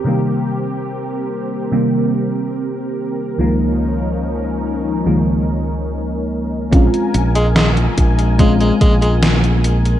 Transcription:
<<
  \new Staff \with { instrumentName = "Analog synth pad" } { \time 4/4 \key bes \dorian \tempo 4 = 72 << { <g' bes'>1~ | <g' bes'>1 | aes''1 | } \\ { c'1 | <f des' ees'>1 | bes'1 | } >> }
  \new Staff \with { instrumentName = "FM electric piano" } { \clef bass \time 4/4 \key bes \dorian <c ees g bes>2 <c ees g bes>8 r4. | <des, ees f aes bes>2 <des, ees f aes bes>8 r4. | <aes c' des' f'>2 <aes c' des' f'>8 r4. | }
  \new Staff \with { instrumentName = "Tenor saxophone" } { \clef bass \time 4/4 \key bes \dorian r1 | r1 | r8. aes16 aes16 r8. aes16 aes16 aes16 aes16 r4 | }
  \new Staff \with { instrumentName = "Fingered electric bass" } { \clef bass \time 4/4 \key bes \dorian r1 | r1 | bes,,8 bes,,4 bes,,4 bes,,4. | }
  \new DrumStaff \with { instrumentName = "Drums" } \drummode { \time 4/4 r4 r4 r4 r4 | r4 r4 r4 r4 | <hh bd>16 hh16 hh16 hh16 <hh sn>16 hh16 <hh bd>16 hh16 <hh bd>16 hh16 <hh bd>16 hh16 <hh sn>16 hh16 hh16 hh16 | }
>>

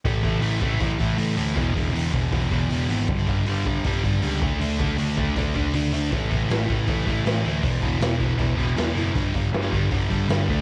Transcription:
<<
  \new Staff \with { instrumentName = "Distorted electric guitar" } { \clef bass \time 4/4 \key a \major \tempo 4 = 158 <a, e a>8 <a, e a>8 <a, e a>8 <a, e a>8 <a, e a>8 <a, e a>8 <a, e a>8 <a, e a>8 | <e, b, e>8 <e, b, e>8 <e, b, e>8 <e, b, e>8 <e, b, e>8 <e, b, e>8 <e, b, e>8 <e, b, e>8 | <g, d g>8 <g, d g>8 <g, d g>8 <g, d g>8 <g, d g>8 <g, d g>8 <g, d g>8 <d a d'>8 | <d a d'>8 <d a d'>8 <d a d'>8 <d a d'>8 <d a d'>8 <d a d'>8 <d a d'>8 <d a d'>8 |
<a, e a>8 <a, e a>8 <a, e a>8 <a, e a>8 <a, e a>8 <a, e a>8 <a, e a>8 <a, e a>8 | <e, b, e>8 <e, b, e>8 <e, b, e>8 <e, b, e>8 <e, b, e>8 <e, b, e>8 <e, b, e>8 <e, b, e>8 | <g, d g>8 <g, d g>8 <g, d g>8 <g, d g>8 <g, d g>8 <g, d g>8 <g, d g>8 <d a d'>8 | }
  \new Staff \with { instrumentName = "Picked electric bass" } { \clef bass \time 4/4 \key a \major a,,4 a,,8 a,,8 a,,8 a,,8 a,,8 d,8 | e,,8 e,,8 e,,8 e,,8 e,,8 e,,8 e,,8 gis,,8 | g,,4 g,,8 g,,8 g,,8 g,,8 cis,8 d,8 | d,8 d,8 d,8 d,8 d,8 d,8 d,8 d,8 |
a,,4 a,,8 a,,8 a,,8 a,,8 a,,8 d,8 | e,,8 e,,8 e,,8 e,,8 e,,8 e,,8 e,,8 fis,,8 | g,,4 g,,8 g,,8 g,,8 g,,8 g,,8 d,8 | }
  \new DrumStaff \with { instrumentName = "Drums" } \drummode { \time 4/4 <hho bd>8 <hho bd>8 hho8 <hho bd>8 <hho bd>8 <hho bd>8 hho8 hho8 | <hho bd>8 <hho bd>8 hho8 <hho bd>8 <hho bd>8 <hho bd>8 hho8 hho8 | <hho bd>8 <hho bd>8 hho8 <hho bd>8 <hho bd>8 <hho bd>8 hho8 <hho bd>8 | hho8 <hho bd>8 hho8 <hho bd>8 <hho bd>8 <hho bd>8 hho8 hho8 |
<hho bd>8 <hho bd>8 <hho sn>8 <hho bd>8 <hho bd>8 <hho bd>8 <hho sn>8 hho8 | <hho bd>8 <hho bd>8 <hho sn>8 <hho bd>8 <hho bd>8 <hho bd>8 <hho sn>8 hho8 | <hho bd>8 <hho bd>8 sn8 <hho bd>8 <hho bd>8 <hho bd>8 <hho sn>8 <hho bd>8 | }
>>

